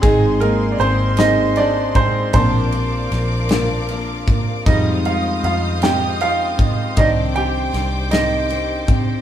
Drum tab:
RD |xxxxxx|xxxxxx|xxxxxx|xxxxxx|
SD |---o--|--oo--|---o--|--oo--|
BD |o----o|o----o|o----o|o----o|